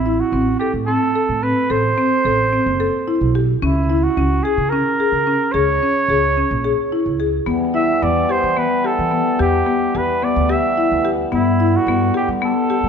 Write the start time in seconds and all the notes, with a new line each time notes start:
Already playing: A1 E4
0.06 E4
0.20 F#4
0.32 A1 C4
0.59 G4 A4
0.73 A2
0.87 C4 A4
1.15 A4
1.29 A2
1.43 C4 B4
1.70 A1 A4 C5
1.98 C4
2.25 A1 A4
2.53 C4
2.66 F#1
2.80 A4
3.08 E4
3.21 B1
3.35 G4
3.62 C#2 C#4 E4
3.89 E4
4.03 F#4
4.17 C#2 C#4
4.43 G#4
4.58 C#3
4.69 C#4 A#4
5.00 G#4
5.12 C#3
5.27 C#4
5.52 C#2 G#4 C#5
5.82 C#4
6.08 C#2 G#4
6.37 C#4
6.51 A#1
6.64 G#4
6.92 E4
7.06 C#2
7.20 G#4
7.46 E2 E3 G3 B3
7.74 E4 E5
8.02 E2 B3 D5
8.29 G4 C5
8.43 E3
8.57 B3 B4
8.84 G4 A4
8.99 E3
9.11 B3
9.39 E2 G4
9.66 B3
9.95 E2 G4 B4
10.22 B3 D5
10.36 D2
10.49 G4 E5
10.77 E4
10.92 D2
11.05 G4
11.32 G2 D3 B3 E4
11.60 E4
11.76 F#4
11.87 G2 B3
12.14 G4
12.28 G3
12.42 B3 A4
12.70 G4
12.83 G3